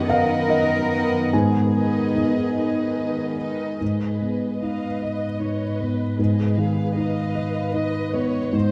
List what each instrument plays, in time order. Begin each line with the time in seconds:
Already playing: felt piano F#2 B3 D#4 D#5 F#5, french horn section D#3 B3
0.08 viola section D#3 D#4, cello section A#4, violin section B4 D#5 F#5, felt piano F5
0.50 felt piano D#5
0.89 viola section D#3 D#4, violin section B4 D#5 F#5
1.32 felt piano G#2 G#5, cello section G#4
1.74 viola section D#3 D#4, violin section B4 D#5
2.15 felt piano B3 D#4 D#5
2.56 viola section D#3 D#4, violin section B4 D#5
3.38 viola section D#3 D#4, violin section B4 D#5
3.80 cello section G#2, felt piano G#2, viola section G#4, violin section B4 D#5
4.21 felt piano B3
4.60 felt piano D#4, viola section B4, violin section D#5 F5
5.01 violin section D#5, felt piano D#5
5.40 felt piano D#4, viola section B4, violin section C#5
5.78 felt piano B3, violin section B4
6.18 felt piano G#2, viola section G#4, violin section B4 D#5
6.57 felt piano D#3, violin section F5
6.96 felt piano D#4, viola section B4, violin section D#5 F5
7.35 felt piano D#5
7.74 felt piano D#4, violin section D#5
8.13 felt piano B3, violin section C#5
8.53 felt piano G#2, cello section G#2, viola section C5, violin section C5 D#5